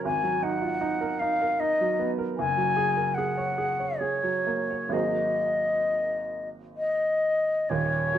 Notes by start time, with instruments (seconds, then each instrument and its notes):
0.05 grand piano G#1, flute G#5
0.23 grand piano F#3
0.42 grand piano D#4, flute F#5
0.62 grand piano F4
0.81 grand piano D#4
1.01 grand piano A#4
1.19 grand piano D#4, flute F5
1.42 grand piano A#4
1.59 grand piano D#4, flute D#5
1.81 grand piano F#3
1.99 grand piano B3
2.18 grand piano A#4
2.37 grand piano F#1, flute G#5
2.57 grand piano F#3
2.77 grand piano G#4
2.97 grand piano A#4
3.14 grand piano G#4, flute F#5
3.37 grand piano C#5
3.58 grand piano G#4
3.80 grand piano C#5
3.99 grand piano G#4, flute C#5
4.23 grand piano F#3
4.47 grand piano A#3
4.70 grand piano C#5
4.89 grand piano G#1 F#3 A#3 G#4, flute D#5
4.93 grand piano C5
6.76 flute D#5
7.69 grand piano D#1 D#2, flute C#5
8.14 grand piano F#3